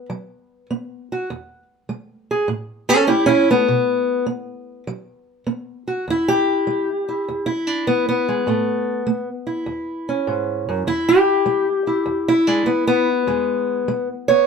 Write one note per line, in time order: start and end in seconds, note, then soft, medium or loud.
0.00 1.62 B4 soft
0.10 0.66 F#3 medium
0.70 1.26 B3 medium
1.12 1.28 F#4 soft
1.30 1.86 E2 medium
1.89 2.45 G#3 medium
2.31 2.47 G#4 medium
2.48 3.04 A2 medium
2.89 3.09 C#4 medium
2.89 3.07 A4 loud
3.07 3.49 A3 medium
3.07 3.27 E4 medium
3.07 3.28 G4 medium
3.26 3.47 C#4 medium
3.26 3.48 E4 loud
3.50 3.66 A3 medium
3.50 4.25 B3 loud
3.68 4.24 B2 medium
4.26 4.83 B3 medium
4.87 5.43 F#3 medium
5.46 6.03 B3 medium
5.88 6.05 F#4 medium
6.08 6.63 E2 medium
6.08 6.89 E4 medium
6.28 7.48 G4 medium
6.67 7.23 G#3 medium
7.09 7.46 E4 soft
7.28 7.84 E2 medium
7.46 8.26 E4 medium
7.67 7.87 D4 medium
7.87 8.27 G#3 medium
7.87 8.07 B3 medium
8.09 9.28 B3 medium
8.29 8.45 G#3 soft
8.47 9.03 A2 medium
8.47 9.05 A3 soft
9.07 9.63 A3 medium
9.47 10.87 E4 soft
9.66 10.23 E2 medium
10.09 10.85 C#4 soft
10.27 10.68 G#2 medium
10.69 10.87 F#2 medium
10.87 11.43 E2 medium
10.87 11.67 E4 medium
11.09 12.28 G4 loud
11.46 12.03 G#3 medium
11.87 12.28 E4 soft
12.06 12.63 E2 medium
12.28 13.08 E4 medium
12.47 12.65 G#3 soft
12.47 12.67 D4 medium
12.66 13.23 G#3 medium
12.66 12.86 B3 medium
12.87 14.08 B3 loud
13.27 13.84 E2 medium
13.27 13.87 G#3 soft
13.88 14.44 G#3 medium
14.28 14.47 B3 soft
14.28 14.47 C#5 medium